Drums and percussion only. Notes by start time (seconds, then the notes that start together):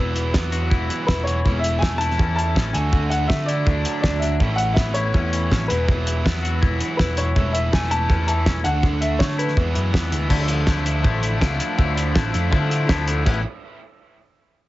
0.16 closed hi-hat
0.34 kick, snare
0.52 closed hi-hat
0.71 kick
0.90 closed hi-hat
1.08 kick, snare
1.27 closed hi-hat
1.46 kick
1.64 closed hi-hat
1.82 kick, snare
2.01 closed hi-hat
2.11 snare
2.19 kick
2.39 closed hi-hat
2.56 kick, snare
2.74 closed hi-hat
2.93 kick
3.11 closed hi-hat
3.30 kick, snare
3.48 closed hi-hat
3.67 kick
3.85 closed hi-hat
4.04 kick, snare
4.22 closed hi-hat
4.40 kick
4.58 closed hi-hat
4.76 kick, snare
4.95 closed hi-hat
5.14 kick
5.33 closed hi-hat
5.52 kick, snare
5.70 closed hi-hat
5.88 kick
6.07 closed hi-hat
6.26 kick, snare
6.36 snare
6.45 closed hi-hat
6.63 kick
6.81 closed hi-hat
6.99 kick, snare
7.17 closed hi-hat
7.36 kick
7.55 closed hi-hat
7.73 kick, snare
7.83 snare
7.91 closed hi-hat
8.10 kick
8.28 closed hi-hat
8.46 kick, snare
8.65 closed hi-hat
8.83 kick
9.02 closed hi-hat
9.20 kick, snare
9.29 snare
9.39 closed hi-hat
9.48 snare
9.57 kick
9.75 closed hi-hat
9.94 kick, snare
10.12 closed hi-hat
10.30 kick, crash
10.48 closed hi-hat
10.67 kick, snare
10.86 closed hi-hat
11.04 kick
11.23 closed hi-hat
11.41 kick, snare
11.60 closed hi-hat
11.79 kick
11.97 closed hi-hat
12.16 kick, snare
12.34 closed hi-hat
12.53 kick
12.71 closed hi-hat
12.89 kick, snare
13.08 closed hi-hat
13.26 kick, crash